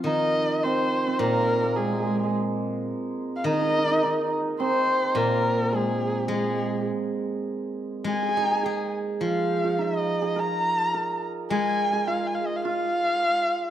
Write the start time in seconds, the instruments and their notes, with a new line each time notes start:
Already playing: guzheng F3 C4 F4, hammered dulcimer F4
0.04 guzheng D#3, hammered dulcimer D#4, erhu D#5
0.63 hammered dulcimer C4, erhu C5
1.07 hammered dulcimer C4
1.19 guzheng A#2, hammered dulcimer A#3, erhu A#4
1.63 hammered dulcimer A#3
1.76 hammered dulcimer G#3, erhu G#4
1.87 hammered dulcimer G#3
1.93 hammered dulcimer G#3
2.00 hammered dulcimer G#3
2.07 hammered dulcimer G#3
2.15 hammered dulcimer G#3
2.23 hammered dulcimer G#3
3.36 erhu F5
3.44 guzheng D#3, hammered dulcimer D#4, erhu D#5
3.53 hammered dulcimer D#4
3.61 hammered dulcimer D#4
3.69 hammered dulcimer D#4
3.78 hammered dulcimer D#4
3.85 hammered dulcimer D#4
3.91 hammered dulcimer D#4
4.03 hammered dulcimer D#4
4.60 hammered dulcimer C4, erhu C5
5.15 guzheng A#2, hammered dulcimer A#3, erhu A#4
5.72 hammered dulcimer G#3, erhu G#4
6.28 guzheng G#3, hammered dulcimer G#3, erhu G#4
8.04 guzheng G#3, hammered dulcimer G#4, erhu G#5
8.13 hammered dulcimer G#4
8.23 hammered dulcimer G#4
8.29 hammered dulcimer G#4
8.37 guzheng D#4, hammered dulcimer G#4
8.44 hammered dulcimer G#4
8.51 hammered dulcimer G#4
8.63 hammered dulcimer G#4, guzheng G#4
9.21 guzheng F3, hammered dulcimer F4, erhu F5
9.64 hammered dulcimer F4
9.79 hammered dulcimer D#4, erhu D#5
10.22 hammered dulcimer G#4
10.36 hammered dulcimer A#4, erhu A#5
10.94 hammered dulcimer A#4
11.50 guzheng G#3, hammered dulcimer G#4, erhu G#5
11.93 hammered dulcimer G#4
12.07 hammered dulcimer F4, erhu F5
12.27 erhu G#5
12.35 erhu F5
12.46 erhu D#5
12.56 erhu F5
12.65 hammered dulcimer F4, erhu F5